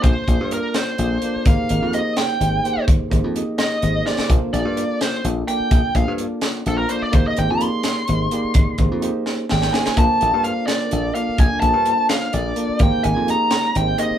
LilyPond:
<<
  \new Staff \with { instrumentName = "Lead electric guitar" } { \time 6/8 \key bes \major \tempo 4. = 85 c''4 bes'8 c''4. | f''4 ees''8 g''4. | r4. ees''4 d''8 | r8 d''4 c''8 r8 g''8~ |
g''8 f''8 r4 a'16 bes'16 c''16 d''16 | c''16 ees''16 g''16 bes''16 c'''2~ | c'''4 r4 g''8 aes''8 | a''4 f''8 d''4 f''8 |
aes''8 a''4 f''8 d''4 | g''8 aes''8 bes''4 g''8 ees''8 | }
  \new Staff \with { instrumentName = "Reed electric piano" } { \time 6/8 \key bes \major <bes d' f' a' c''>8 <bes d' f' a' d''>8 <bes d' f' a' d''>4 <bes d' f' a' d''>8 <bes d' f' a' d''>8 | <bes ees' g' aes' c''>8 <bes ees' g' aes' bes'>8 <bes ees' g' aes' c''>4 <bes ees' g' aes' c''>8 <bes ees' g' aes' c''>8~ | <bes ees' g' aes' c''>8 <bes ees' g' aes' c''>8 <bes ees' g' aes' ees''>4 <bes ees' g' aes' c''>8 <bes ees' g' aes' c''>8 | <bes d' f' a' c''>8 <bes d' f' a' d''>8 <bes d' f' a' d''>4 <bes d' f' a' d''>8 <bes d' f' a' d''>8~ |
<bes d' f' a' d''>8 <bes d' f' a' c''>8 <bes d' f' a' d''>4 <bes d' f' a' c''>8 <bes d' f' a' d''>8 | <bes ees' g' aes' c''>8 <bes ees' g' aes' c''>8 <bes ees' g' aes' d''>4 <bes ees' g' aes' c''>8 <bes ees' g' aes' d''>8~ | <bes ees' g' aes' d''>8 <bes ees' g' aes' c''>8 <bes ees' g' aes' c''>4 <bes ees' g' aes' d''>8 <bes ees' g' aes' c''>8 | <bes d' f' a' c''>8 <bes d' f' a' d''>8 <bes d' f' a' c''>4 <bes d' f' a' d''>8 <bes d' f' a' d''>8~ |
<bes d' f' a' d''>8 <bes d' f' a' c''>8 <bes d' f' a' c''>4 <bes d' f' a' d''>8 <bes d' f' a' d''>8 | <bes ees' g' aes' c''>8 <bes ees' g' aes' bes'>8 <bes ees' g' aes' ees''>4 <bes ees' g' aes' c''>8 <bes ees' g' aes' c''>8 | }
  \new Staff \with { instrumentName = "String machine" } { \time 6/8 \key bes \major r2. | r2. | r2. | r2. |
r2. | r2. | r2. | <bes d'>2.~ |
<bes d'>2. | <aes c'>2. | }
  \new Staff \with { instrumentName = "Slap bass" } { \clef bass \time 6/8 \key bes \major bes,,16 r16 bes,,16 g,8 r8. bes,,8 r8 | aes,,16 r16 aes,,16 f,8 r8. aes,,8 r8 | aes,,16 r16 aes,,16 f,8 r8. aes,,8 r8 | bes,,16 r16 bes,,16 g,8 r8. bes,,8 r8 |
bes,,16 r16 bes,,16 g,8 r8. bes,,8 r8 | aes,,16 r16 aes,,16 f,8 r8. aes,,8 r8 | aes,,16 r16 aes,,16 f,8 r8. aes,,8 r8 | bes,,16 r16 bes,,16 g,8 r8. bes,,8 r8 |
bes,,16 r16 bes,,16 g,8 r8. bes,,8 r8 | aes,,16 r16 aes,,16 f,8 r8. aes,,8 r8 | }
  \new DrumStaff \with { instrumentName = "Drums" } \drummode { \time 6/8 <hh bd>8 <hh bd>8 hh8 <hh sn>8 hh8 hh8 | <hh bd>8 hh8 hh8 <hh sn>8 hh8 hh8 | <hh bd>8 <hh bd>8 hh8 <hh sn>8 hh8 sn16 sn16 | <hh bd>8 hh8 hh8 <hh sn>8 hh8 hh8 |
<hh bd>8 <hh bd>8 hh8 <hh sn>8 hh8 hh8 | <hh bd>8 hh8 hh8 <hh sn>8 hh8 hh8 | <hh bd>8 <hh bd>8 hh8 sn8 sn16 sn16 sn16 sn16 | <hh bd>8 hh8 hh8 <hh sn>8 hh8 hh8 |
<hh bd>8 <hh bd>8 hh8 <hh sn>8 hh8 hh8 | <hh bd>8 hh8 hh8 <hh sn>8 hh8 hh8 | }
>>